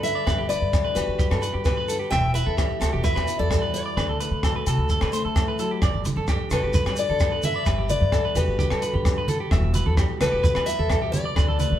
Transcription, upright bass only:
0.00 0.15 G2 medium
0.28 0.55 G1 medium
0.62 0.80 G2 medium
0.96 1.06 E2 medium
1.08 1.17 G1 medium
1.31 1.50 G2 medium
1.54 2.00 G2 medium
2.12 2.40 E1 medium
2.47 2.65 E2 medium
2.81 2.91 D2 medium
2.94 3.03 E1 medium
3.17 3.35 E2 medium
3.40 3.85 E2 medium
3.97 4.24 D2 medium
4.31 4.50 D3 medium
4.67 4.76 C3 medium
4.78 4.87 D2 medium
5.02 5.20 D3 medium
5.25 5.70 D3 medium
5.82 6.10 G1 medium
6.17 6.35 G2 medium
6.51 6.60 E2 medium
6.63 6.72 G1 medium
6.86 7.04 G2 medium
7.10 7.55 G2 medium
7.67 7.94 G1 medium
8.01 8.20 G2 medium
8.36 8.45 E2 medium
8.48 8.57 G1 medium
8.71 8.89 G2 medium
8.95 9.40 G2 medium
9.52 9.79 E1 medium
9.87 10.05 E2 medium
10.22 10.31 D2 medium
10.33 10.42 E1 medium
10.56 10.74 E2 medium
10.79 11.24 E2 medium
11.37 11.64 D2 medium
11.72 11.79 D3 medium

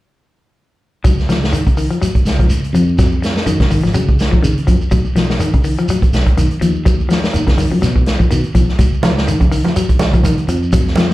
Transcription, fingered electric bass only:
1.05 1.16 C#2 medium
1.29 1.50 C#2 medium
2.25 2.37 C#2 medium
2.49 2.61 C#2 medium
2.73 3.38 F2 medium
3.46 3.68 F#2 medium
3.70 3.82 G#1 medium
3.84 3.94 G#1 medium
3.94 4.16 C#3 medium
4.44 4.55 C#3 medium
4.68 4.80 F#2 medium
4.92 5.04 B1 medium
5.15 5.37 B1 medium
6.13 6.25 B1 medium
6.37 6.49 B1 medium
6.62 7.26 D#2 medium
7.34 7.56 D#2 medium
7.57 7.70 F#2 medium
7.71 7.81 F#2 medium
7.82 8.04 B2 medium
8.32 8.43 B2 medium
8.55 8.67 B1 medium
8.79 8.91 C#2 medium
9.03 9.25 C#2 medium
10.00 10.12 C#2 medium
10.23 10.35 C#2 medium
10.48 11.13 F2 medium

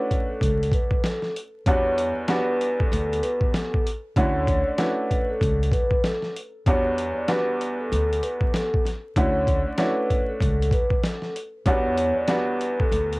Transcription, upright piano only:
0.00 1.37 A3 medium
0.00 1.37 C#4 medium
0.00 1.37 D4 medium
0.00 1.37 E4 medium
0.00 1.37 F#4 medium
1.67 2.25 E2 loud
1.67 2.25 G3 medium
1.67 2.26 B3 medium
1.67 2.26 D4 medium
1.67 2.26 F#4 loud
2.28 3.87 E2 medium
2.28 3.87 G3 medium
2.28 3.87 B3 medium
2.28 3.87 D4 medium
2.28 3.87 F#4 loud
4.17 4.75 D3 medium
4.17 4.75 A3 medium
4.17 4.75 C#4 medium
4.17 4.76 E4 medium
4.17 4.76 F#4 loud
4.78 6.37 A3 medium
4.78 6.37 C#4 medium
4.78 6.37 D4 medium
4.78 6.37 E4 medium
4.78 6.37 F#4 loud
6.67 7.25 E2 medium
6.67 7.26 G3 medium
6.67 7.26 B3 medium
6.67 7.26 D4 medium
6.67 7.26 F#4 loud
7.28 8.87 E2 medium
7.28 8.87 G3 medium
7.28 8.87 B3 medium
7.28 8.87 D4 medium
7.28 8.87 F#4 medium
9.17 9.75 D3 medium
9.17 9.75 A3 medium
9.17 9.75 C#4 medium
9.17 9.75 E4 medium
9.17 9.75 F#4 loud
9.78 11.37 A3 medium
9.78 11.37 C#4 medium
9.78 11.37 D4 medium
9.78 11.37 E4 medium
9.78 11.37 F#4 loud
11.67 12.25 E2 loud
11.67 12.25 G3 medium
11.67 12.25 B3 medium
11.67 12.26 D4 medium
11.67 12.26 F#4 loud
12.28 13.20 E2 medium
12.28 13.20 G3 medium
12.28 13.20 B3 medium
12.28 13.20 D4 medium
12.28 13.20 F#4 loud

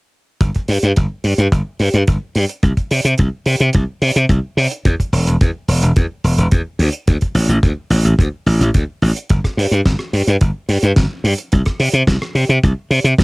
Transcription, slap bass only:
0.41 0.49 G1 medium
0.69 0.77 G2 medium
0.83 0.91 G2 medium
0.97 1.05 G1 medium
1.24 1.33 G2 medium
1.38 1.47 G2 medium
1.52 1.61 G1 medium
1.80 1.88 G2 medium
1.94 2.02 G2 medium
2.08 2.16 G1 medium
2.36 2.44 G2 medium
2.63 2.72 C2 medium
2.91 3.00 C3 medium
3.05 3.13 C3 medium
3.19 3.27 C2 medium
3.46 3.55 C3 medium
3.60 3.69 C3 medium
3.75 3.83 C2 medium
4.02 4.10 C3 medium
4.16 4.24 C3 medium
4.29 4.38 C2 medium
4.57 4.66 C3 medium
4.85 4.94 E2 medium
5.13 5.21 E1 medium
5.27 5.35 E1 medium
5.41 5.50 E2 medium
5.68 5.77 E1 medium
5.82 5.91 E1 medium
5.96 6.05 E2 medium
6.24 6.33 E1 medium
6.38 6.46 E1 medium
6.52 6.61 E2 medium
6.79 6.88 D2 medium
7.08 7.16 D2 medium
7.35 7.44 A1 medium
7.49 7.57 A1 medium
7.63 7.72 D2 medium
7.90 7.99 A1 medium
8.05 8.13 A1 medium
8.19 8.27 D2 medium
8.46 8.55 A1 medium
8.61 8.69 A1 medium
8.74 8.83 D2 medium
9.02 9.11 A1 medium
9.30 9.39 G1 medium
9.57 9.66 G2 medium
9.71 9.80 G2 medium
9.86 9.94 G1 medium
10.13 10.22 G2 medium
10.27 10.36 G2 medium
10.41 10.50 G1 medium
10.69 10.77 G2 medium
10.83 10.91 G2 medium
10.97 11.05 G1 medium
11.24 11.33 G2 medium
11.53 11.61 C2 medium
11.80 11.88 C3 medium
11.93 12.02 C3 medium
12.07 12.16 C2 medium
12.35 12.44 C3 medium
12.49 12.58 C3 medium
12.63 12.72 C2 medium
12.91 12.99 C3 medium
13.04 13.13 C3 medium
13.18 13.24 C2 medium

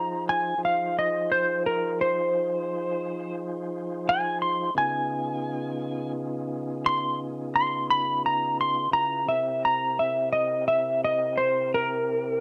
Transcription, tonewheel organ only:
0.00 0.54 F3 medium
0.00 0.55 D#4 medium
0.00 0.55 F4 medium
0.00 0.54 G#4 medium
0.00 0.55 C5 medium
0.58 4.70 F3 medium
0.58 4.71 D#4 medium
0.58 4.71 F4 medium
0.58 4.71 G#4 medium
0.58 4.71 C5 medium
4.75 8.88 C#3 medium
4.75 8.88 B3 medium
4.75 8.88 D#4 medium
4.75 8.88 F4 medium
4.75 8.89 G#4 medium
8.91 9.27 C#3 medium
8.91 9.24 E4 medium
8.91 9.27 F4 medium
8.91 9.27 G#4 medium
8.91 9.27 B4 medium
9.25 12.40 C3 medium
9.25 12.40 C4 medium
9.25 12.40 E4 medium
9.25 12.40 G4 medium
9.25 12.40 A#4 medium

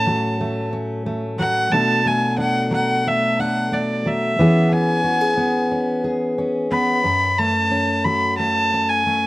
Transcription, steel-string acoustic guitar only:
0.00 1.67 A2 medium
0.00 0.40 A3 medium
0.00 0.72 C#4 medium
0.07 1.38 F#3 medium
0.41 1.05 A3 medium
0.73 1.72 C#4 medium
1.06 1.72 A3 medium
1.39 1.68 F#3 medium
1.72 4.38 B2 medium
1.72 2.69 F#3 medium
1.72 2.04 A3 medium
1.72 2.37 D4 medium
1.72 4.36 A4 medium
2.06 3.05 A3 medium
2.38 3.38 D4 medium
2.71 4.04 F#3 medium
3.07 3.71 A3 medium
3.39 4.34 D4 medium
3.72 4.38 A3 medium
4.06 4.34 F#3 medium
4.39 7.05 E3 medium
4.39 5.36 B3 medium
4.39 4.71 C#4 medium
4.39 5.04 G#4 medium
4.72 5.71 C#4 medium
5.04 5.21 F#4 medium
5.21 6.03 G#4 medium
5.37 6.70 B3 medium
5.71 6.37 C#4 medium
6.04 7.00 G#4 medium
6.38 7.70 C#4 medium
6.71 7.01 B3 medium
7.04 9.27 F#2 medium
7.39 8.38 A3 medium
7.71 8.71 C#4 medium
8.05 9.27 F#3 medium
8.39 9.05 A3 medium
8.74 9.27 C#4 medium
9.06 9.27 A3 medium

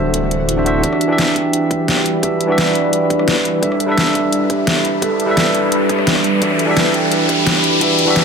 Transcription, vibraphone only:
0.00 0.85 A4 medium
0.00 0.85 C5 loud
0.49 0.58 E4 loud
0.83 0.93 D4 medium
1.36 1.52 G5 medium
1.71 1.87 G4 medium
2.23 2.39 B4 medium
2.41 2.56 B4 medium
2.58 2.75 D5 loud
3.28 3.37 D4 medium
3.62 3.72 D4 medium
4.15 4.31 E5 medium
4.50 4.66 G4 medium
5.02 5.18 A4 medium
5.20 5.35 A4 medium
5.37 5.54 B4 loud
6.07 6.17 D4 medium
6.42 6.51 D4 medium
6.94 7.10 G5 medium
7.29 7.45 G4 medium
7.81 7.97 B4 medium
7.99 8.14 B4 medium
8.16 8.24 D5 loud

